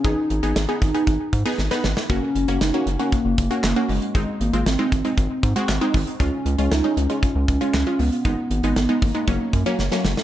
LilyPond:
<<
  \new Staff \with { instrumentName = "Synth pluck" } { \time 4/4 \key gis \dorian \tempo 4 = 117 <b dis' gis'>8 r16 <b dis' gis'>16 r16 <b dis' gis'>16 r16 <b dis' gis'>8 r8 <b dis' gis'>16 r16 <b dis' b'>8 r16 | <ais cis' fis'>8 r16 <ais cis' fis'>16 r16 <ais cis' fis'>16 r16 <ais cis' fis'>8 r8 <ais cis' fis'>16 r16 <ais cis' fis'>8 r16 | <gis bis dis'>8 r16 <gis bis eis'>16 r16 <gis bis dis'>16 r16 <gis bis dis'>8 r8 <gis bis fis'>16 r16 <gis bis dis'>8 r16 | <gis cis' eis'>8 r16 <gis cis' eis'>16 r16 <gis cis' dis'>16 r16 <gis cis' eis'>8 r8 <gis cis' eis'>16 r16 <gis cis' eis'>8 r16 |
<gis b dis'>8 r16 <gis b dis'>16 r16 <gis b dis'>16 r16 <gis b dis'>16 <fis ais cis'>8 r16 <fis ais cis'>16 r16 <fis ais cis'>8 r16 | }
  \new Staff \with { instrumentName = "Soft synth lead" } { \time 4/4 \key gis \dorian dis'4 dis'2~ dis'8 r8 | cis'4 dis'8 cis'8 ais4 ais8 gis8 | gis8 ais8 bis2~ bis8 r8 | cis'4 dis'8 cis'8 cis'4. b8~ |
b4 b8 ais4. r4 | }
  \new Staff \with { instrumentName = "Analog synth bass" } { \clef bass \time 4/4 \key gis \dorian gis,,16 r16 gis,,16 gis,,16 gis,,16 r16 gis,,16 r16 gis,,16 r16 gis,16 r16 gis,,16 r16 gis,,16 r16 | fis,,16 r16 fis,,16 fis,,16 fis,,16 r16 fis,,16 r8 fis,,16 fis,,16 r16 fis,,16 r16 fis,,16 r16 | gis,,16 r16 gis,,16 gis,,16 gis,,16 r16 gis,,16 r16 gis,,16 r16 gis,16 r16 gis,,16 r16 gis,,16 r16 | cis,16 r16 cis,16 cis,16 cis,16 r16 cis,16 r8 cis,16 cis,16 r16 cis,16 r16 cis,16 r16 |
gis,,16 r16 gis,,16 gis,,16 gis,,16 r16 gis,,16 r16 fis,,16 r16 fis,16 r16 fis,,16 r16 fis,,16 r16 | }
  \new DrumStaff \with { instrumentName = "Drums" } \drummode { \time 4/4 <hh bd>8 hh16 hh16 <hh sn>8 <hh bd>16 hh16 <hh bd>8 <hh bd>16 hh16 sn16 sn16 sn16 sn16 | <hh bd>8 hh16 hh16 <hh sn>8 hh16 hh16 <hh bd>8 <hh bd>16 hh16 <hc hh sn>8 hho16 hh16 | <hh bd>8 hh16 hh16 <hh sn>8 <hh bd>16 hh16 <hh bd>8 <hh bd>16 hh16 <hc hh sn>8 <hho bd>16 hh16 | <hh bd>8 hh16 hh16 <hh sn>8 hh16 hh16 <hh bd>8 <hh bd>16 hh16 <hc hh sn>8 hho16 hh16 |
<hh bd>8 hh16 hh16 <hh sn>8 <hho bd>16 hh16 <hh bd>8 <hh bd>16 hh16 sn16 sn16 sn16 sn16 | }
>>